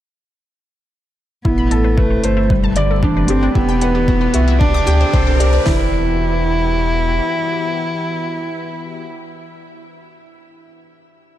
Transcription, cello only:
1.45 1.99 B3 medium
1.98 2.52 A3 medium
2.50 2.77 G3 medium
2.76 3.04 D3 medium
3.02 3.30 E3 medium
3.28 3.54 C4 loud
3.55 4.61 B3 loud
4.59 5.39 D4 loud
5.66 9.03 E4 loud

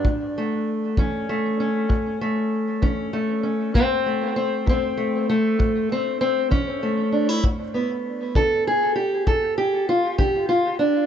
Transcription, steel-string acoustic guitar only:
0.05 0.61 A2 medium
0.38 1.29 A3 soft
0.98 1.53 E3 medium
0.98 1.60 C#4 medium
1.29 2.20 A3 medium
1.60 2.82 C#4 soft
1.89 2.45 A2 medium
2.21 3.12 A3 medium
2.82 3.38 E3 medium
2.82 3.42 C#4 medium
3.13 3.71 A3 medium
3.43 3.71 C#4 medium
3.74 4.30 A2 medium
3.74 4.35 C4 medium
4.06 4.96 A3 soft
4.36 4.67 C4 medium
4.66 5.22 E3 medium
4.66 5.29 C4 medium
4.97 5.28 A3 soft
5.30 5.90 A3 medium
5.59 6.14 A2 medium
5.92 6.20 C4 medium
6.21 6.51 C4 medium
6.51 7.06 E3 medium
6.51 7.43 C#4 medium
6.83 7.40 A3 soft
7.12 7.29 D4 soft
7.29 7.44 E4 soft
7.44 7.99 G2 medium
7.74 11.06 B3 soft
8.35 8.90 D3 medium
8.35 8.66 A4 medium
8.67 8.95 G#4 medium
8.96 9.26 G4 medium
9.27 9.82 G2 medium
9.27 9.57 A4 medium
9.58 9.88 G4 medium
9.89 10.18 F4 medium
10.18 10.74 D3 medium
10.18 10.48 G4 medium
10.49 10.79 F4 medium
10.79 11.06 D4 medium

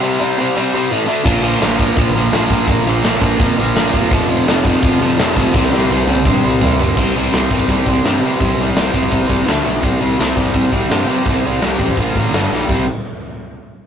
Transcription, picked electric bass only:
1.25 1.55 A#1 loud
1.61 1.90 A#1 medium
1.97 2.12 A#1 loud
2.16 2.30 A#1 medium
2.33 2.47 A#1 medium
2.50 2.65 A#1 loud
2.68 2.83 A#1 loud
2.87 3.01 A#1 medium
3.06 3.20 A#1 medium
3.22 3.36 A#1 loud
3.40 3.54 F2 loud
3.59 3.73 A#1 loud
3.77 3.91 A#1 loud
3.94 4.08 F1 loud
4.11 4.40 F1 loud
4.48 4.77 F1 medium
4.83 4.97 F1 loud
5.01 5.15 F1 medium
5.18 5.33 F1 loud
5.36 5.51 F1 loud
5.54 5.69 C2 loud
5.72 5.86 C2 medium
5.90 6.04 C2 medium
6.07 6.22 C2 loud
6.25 6.40 G2 medium
6.44 6.58 C2 medium
6.61 6.76 C2 medium
6.80 6.94 G1 medium
6.97 7.09 C2 loud
7.16 7.28 C2 medium
7.33 7.45 C2 medium
7.51 7.63 C2 medium
7.68 7.80 C2 medium
7.87 7.99 C2 medium
8.03 8.16 G2 medium
8.21 8.33 C3 medium
8.41 8.53 C2 loud
8.58 8.70 C2 medium
8.75 8.88 C2 medium
8.94 9.06 C2 loud
9.12 9.24 C2 medium
9.30 9.42 C2 medium
9.49 9.60 D2 medium
9.67 9.79 B1 medium
9.83 9.95 C2 loud
10.02 10.14 C2 medium
10.20 10.32 C2 medium
10.37 10.49 C2 loud
10.54 10.67 C2 medium
10.72 10.85 C2 medium
10.90 11.02 G2 medium
11.08 11.21 C3 medium
11.26 11.38 C2 medium
11.45 11.57 C2 medium
11.62 11.74 C2 medium
11.79 11.92 A1 medium
11.97 12.10 A#1 medium
12.15 12.28 A1 medium
12.33 12.45 G1 medium
12.51 12.64 B1 medium
12.69 12.86 C2 loud

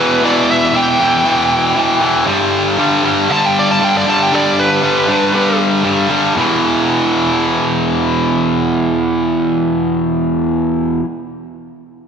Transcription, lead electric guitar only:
0.00 0.21 B4 medium
0.25 0.49 D5 medium
0.51 0.74 E5 medium
0.76 2.24 G5 medium
3.32 3.46 A5 medium
3.46 3.56 G5 medium
3.59 3.70 D5 medium
3.71 3.84 A5 medium
3.84 3.95 G5 medium
3.97 4.08 D5 medium
4.09 4.23 A5 medium
4.23 4.33 G5 medium
4.35 4.58 D5 medium
4.60 5.58 B4 medium

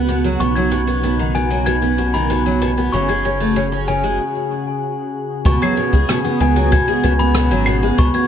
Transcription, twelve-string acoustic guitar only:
0.08 0.23 B2 medium
0.24 0.39 F#3 medium
0.40 0.55 B2 medium
0.56 0.70 F#3 medium
0.71 0.81 B2 medium
0.87 1.02 B3 medium
1.03 1.18 B2 medium
1.19 1.34 D#3 medium
1.35 1.49 B2 medium
1.50 1.65 F#3 medium
1.66 1.76 B2 medium
1.82 1.96 B3 medium
1.98 2.12 B2 medium
2.14 2.28 D#3 medium
2.30 2.44 B2 medium
2.46 2.60 F#3 medium
2.62 2.71 B2 medium
2.78 2.92 B3 medium
2.93 3.07 C#3 medium
3.09 3.23 G#3 medium
3.25 3.39 C#3 medium
3.40 3.55 A3 medium
3.56 3.65 C#3 medium
3.72 3.86 C#4 medium
3.88 4.02 C#3 medium
4.04 4.18 G#3 medium
5.46 5.60 B2 medium
5.62 5.76 F#3 medium
5.77 5.91 B2 medium
5.93 6.07 G#3 medium
6.09 6.18 B2 medium
6.25 6.39 B3 medium
6.40 6.55 B2 medium
6.56 6.70 F#3 medium
6.72 6.86 B2 medium
6.88 7.02 G#3 medium
7.03 7.13 B2 medium
7.19 7.34 B3 medium
7.35 7.49 B2 medium
7.51 7.65 F#3 medium
7.67 7.81 B2 medium
7.83 7.97 G#3 medium
7.98 8.07 B2 loud
8.14 8.27 B3 medium

